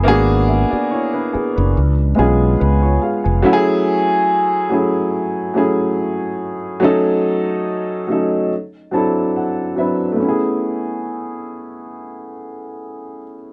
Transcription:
0.04 fretless electric bass G#1, upright piano A#3 B3 D4 F#4
0.08 upright piano G#4
0.48 upright piano G#4 E5
0.71 upright piano F#4 D5, muted fretless electric bass stroke
0.91 upright piano E4 C#5
1.14 upright piano D4 B4
1.33 upright piano B3 G#4, muted fretless electric bass stroke
1.56 fretless electric bass F#1, upright piano D4 B4
1.77 fretless electric bass C#2
2.15 fretless electric bass B1, upright piano G#3 B3 C#4 F4
2.19 upright piano G#4
2.60 fretless electric bass C#2, upright piano B4
2.82 upright piano F4 C#5
3.02 upright piano G#4 F5
3.24 fretless electric bass F1, upright piano B4 G#5
3.42 upright piano F#3 A3 C#4 E4 F#4
3.53 upright piano G#4
4.69 upright piano F#3 A3 C#4 E4
4.73 upright piano G#4
5.54 upright piano F#3 A3 C#4 E4 G#4
6.80 upright piano F#3 A3 C#4 D#4
6.84 upright piano A4
8.07 upright piano F#3 A3 C#4 D#4
8.11 upright piano A4
8.91 upright piano F#3 C4 D4 E4 A4 A5
9.36 upright piano F#5
9.76 upright piano F#3 C4 D4 E4 E5
9.80 upright piano B4
10.12 upright piano A3
10.16 upright piano B3 C#4
10.25 upright piano E4 G#4

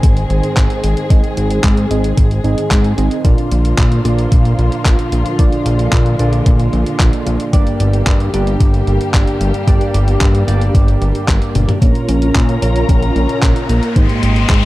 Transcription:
Already playing: analog polysynth G#2 C4 D#4 G#4 D#5, string section D#3 G#3 C4 G#4
0.03 analog synth bass G#1, kick, closed hi-hat
0.17 closed hi-hat
0.30 analog synth bass G#1, closed hi-hat
0.43 closed hi-hat
0.57 analog synth bass G#1, kick, clap, closed hi-hat
0.70 closed hi-hat
0.83 analog synth bass G#1, closed hi-hat
0.97 closed hi-hat
1.10 analog synth bass G#1, analog polysynth G#2 C4 D#4 G#4 D#5, kick, closed hi-hat
1.24 closed hi-hat
1.37 analog synth bass G#1, closed hi-hat
1.50 closed hi-hat
1.64 analog synth bass G#2, kick, clap, closed hi-hat
1.77 closed hi-hat
1.91 analog synth bass G#1, analog polysynth G#2 C4 D#4 G#4 D#5, closed hi-hat
2.04 closed hi-hat
2.17 analog synth bass G#1, kick, closed hi-hat
2.31 closed hi-hat
2.44 analog synth bass G#1, analog polysynth G#2 C4 D#4 G#4 D#5, closed hi-hat
2.58 closed hi-hat
2.71 analog synth bass G#2, kick, clap, closed hi-hat
2.84 closed hi-hat
2.98 analog synth bass G#1, analog polysynth C4 D#4 G#4 D#5, closed hi-hat
3.11 closed hi-hat
3.24 analog synth bass A#1, analog polysynth A#2 A#3 D4 F4 D5, string section D3 F3 A#3 F4, kick, closed hi-hat
3.38 closed hi-hat
3.51 analog synth bass A#1, closed hi-hat
3.65 closed hi-hat
3.78 analog synth bass A#2, kick, clap, closed hi-hat
3.92 closed hi-hat
4.05 analog synth bass A#1, analog polysynth A#2 A#3 D4 F4 D5, closed hi-hat
4.19 closed hi-hat
4.32 analog synth bass A#1, kick, closed hi-hat
4.45 closed hi-hat
4.59 analog synth bass A#1, closed hi-hat
4.72 closed hi-hat
4.85 analog synth bass A#1, kick, clap, closed hi-hat
4.99 closed hi-hat
5.12 analog synth bass A#1, closed hi-hat
5.26 closed hi-hat
5.39 analog synth bass A#1, analog polysynth A#2 A#3 D4 F4 D5, string section G#3, kick, closed hi-hat
5.52 closed hi-hat
5.66 analog synth bass A#1, closed hi-hat
5.79 closed hi-hat
5.93 analog synth bass A#2, kick, clap, closed hi-hat
6.06 closed hi-hat
6.19 analog synth bass A#1, analog polysynth A#2 A#3 D4 F4 D5, closed hi-hat
6.33 closed hi-hat
6.46 analog synth bass A#1, kick, closed hi-hat
6.60 closed hi-hat
6.73 analog synth bass A#1, closed hi-hat
6.86 closed hi-hat
7.00 analog synth bass A#1, kick, clap, closed hi-hat
7.13 closed hi-hat
7.27 analog synth bass A#1, closed hi-hat
7.40 closed hi-hat
7.53 analog synth bass G1, analog polysynth G2 A#3 D4 G4 D5, string section G3 A#3 G4, kick, closed hi-hat
7.67 closed hi-hat
7.80 analog synth bass G1, closed hi-hat
7.93 closed hi-hat
8.07 analog synth bass G2, kick, clap, closed hi-hat
8.20 closed hi-hat
8.34 analog synth bass G1, analog polysynth G2 A#3 D4 G4 D5, closed hi-hat
8.47 closed hi-hat
8.60 analog synth bass G1, kick, closed hi-hat
8.74 closed hi-hat
8.87 analog synth bass G1, closed hi-hat
9.01 closed hi-hat
9.14 analog synth bass G1, kick, clap, closed hi-hat
9.27 closed hi-hat
9.41 analog synth bass G1, closed hi-hat
9.54 closed hi-hat
9.67 analog synth bass G1, analog polysynth G2 A#3 D4 G4 D5, kick, closed hi-hat
9.81 closed hi-hat
9.94 analog synth bass G1, closed hi-hat
10.08 closed hi-hat
10.21 analog synth bass G2, kick, clap, closed hi-hat
10.35 closed hi-hat
10.48 analog synth bass G1, analog polysynth G2 A#3 D4 G4 D5, closed hi-hat
10.61 closed hi-hat
10.75 analog synth bass G1, kick, closed hi-hat
10.88 closed hi-hat
11.01 analog synth bass G1, closed hi-hat
11.15 closed hi-hat
11.28 analog synth bass G1, kick, clap, closed hi-hat
11.42 closed hi-hat
11.55 analog synth bass G1, closed hi-hat, high tom
11.69 closed hi-hat, mid tom
11.82 analog synth bass A#1, analog polysynth A#2 A#3 C#4 F4 C#5, string section F4 A#4 C#5 A#5, kick, closed hi-hat, riser
11.95 closed hi-hat
12.08 analog synth bass A#1, analog synth lead C#4, closed hi-hat
12.22 closed hi-hat
12.35 analog synth bass A#2, kick, clap, closed hi-hat
12.49 closed hi-hat
12.62 analog synth bass A#1, analog polysynth A#2 A#3 C#4 F4 C#5, closed hi-hat
12.76 closed hi-hat
12.89 analog synth bass A#1, analog synth lead C#4, kick, closed hi-hat
13.03 closed hi-hat
13.16 analog synth bass A#1, closed hi-hat
13.29 closed hi-hat
13.42 analog synth bass A#1, kick, clap, closed hi-hat
13.56 closed hi-hat
13.69 analog synth bass A#1, analog synth lead A#3, closed hi-hat
13.83 closed hi-hat
13.96 analog synth bass G#1, analog polysynth G#2 G#3 D#4 G4 C5, string section G#3 D#5 G5 C6, kick, closed hi-hat
14.09 closed hi-hat
14.23 analog synth bass G#1, closed hi-hat
14.36 closed hi-hat
14.49 analog synth bass G#2, analog synth lead G#3, kick, clap, closed hi-hat

